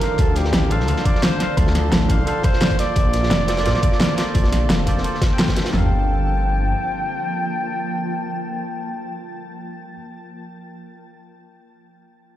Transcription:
Already playing: D#3 F3 A#4 D5
0.00 D3 D4 A4 C5, snare, closed hi-hat
0.04 F5
0.18 D2 A4 C5, kick, closed hi-hat
0.36 G4, snare, closed hi-hat
0.45 snare
0.53 A1, snare, closed hi-hat
0.69 D3 D4 A4 C5 F5, closed hi-hat
0.80 C2, snare
0.87 D2 D3 D4 A4 C5 F5, closed hi-hat
0.97 snare
1.04 D3 D4 A4 C5 D5 F5, kick, closed hi-hat
1.15 snare
1.23 C5, snare, closed hi-hat
1.37 D3 D4 A4, snare, closed hi-hat
1.41 C5 F5
1.57 D2 A4, kick, closed hi-hat
1.67 snare
1.75 snare, closed hi-hat
1.92 A1, snare, closed hi-hat
2.08 D3 D4 A4 C5 F5, kick, closed hi-hat
2.19 C2
2.25 D3 D4 A4 C5 F5, closed hi-hat
2.42 D3 D4 A4 C5 F5, kick, closed hi-hat
2.53 snare
2.60 snare, closed hi-hat
2.71 kick, closed hi-hat
2.76 A#3 F4 A4 D5, snare, closed hi-hat
2.80 C5 D5
2.96 A#1 D3 C4 A4, kick, closed hi-hat
3.13 snare, closed hi-hat
3.23 snare
3.31 F1, snare, closed hi-hat
3.47 A#3 F4 A4 C5 D5, snare, closed hi-hat
3.57 F1, snare, closed hi-hat
3.64 A#1 A#3 F4 A4 C5 D5, snare, closed hi-hat
3.75 snare
3.81 A#3 F4 A4 C5 D5, kick, closed hi-hat
3.92 snare
4.00 snare, closed hi-hat
4.15 A#3 F4 A4, snare, closed hi-hat
4.19 C5 D5
4.34 A#1, kick, closed hi-hat
4.44 snare
4.52 snare, closed hi-hat
4.70 F1, snare, closed hi-hat
4.86 A#3 F4 A4 C5 D5, kick, closed hi-hat
4.96 F1, snare
5.03 A#3 F4 A4 C5 D5, closed hi-hat
5.14 snare
5.22 kick, snare, closed hi-hat
5.28 A#3 F4 A4
5.32 C5 G5
5.39 snare, closed hi-hat
5.48 kick, snare, closed hi-hat
5.56 snare, closed hi-hat
5.65 snare, closed hi-hat
5.69 G3 D4
5.73 G1 F3 A#3 A4 A#4 G5 A5, snare, floor tom
5.78 F5

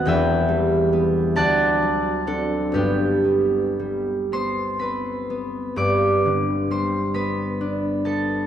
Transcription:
Already playing: B3
0.05 E1 E2 B4 E5 G5
0.48 G3
0.93 B3
1.36 D2 D5 F#5 A5
1.82 F#3
2.27 C4 D4 A4
2.72 G1 G2 B3 D4 G4
3.24 B3
3.79 G3
4.32 B3 C5 C6
4.79 C4 B4 B5
5.30 B3
5.76 G1 G2 D5 D6
6.25 D3
6.71 G3 C5 C6
7.14 B3 B4 B5
7.61 D4
8.05 B3 A4 A5

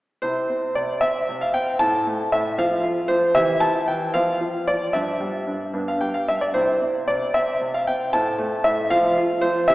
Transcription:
0.22 C3 C4 E4 C5
0.49 C4
0.75 C3 D5
1.01 C4 E5
1.29 C3
1.41 F5
1.54 C4 G5
1.79 A2 C4 E4 A5
2.07 A3
2.32 A2 E5
2.58 F3 C4 F4 F5
2.83 F4
3.08 F3 C5
3.35 E3 C4 G4 E5
3.60 E4 A5
3.88 E3 G5
4.14 F3 C4 F4 F5
4.41 F4
4.67 F3 D5
4.93 G2 C4 E5
5.20 G3
5.47 G2
5.74 G2 B3 D4
5.88 F5
6.01 G3 G5
6.14 F5
6.28 G2 E5
6.41 D5
6.54 C3 C4 E4 C5
6.81 C4
7.08 C3 D5
7.34 C4 E5
7.61 C3
7.74 F5
7.87 C4 G5
8.13 A2 C4 E4 A5
8.38 A3
8.64 A2 E5
8.90 F3 C4 F4 F5
9.18 F4
9.41 F3 C5
9.68 E3 C4 G4 E5

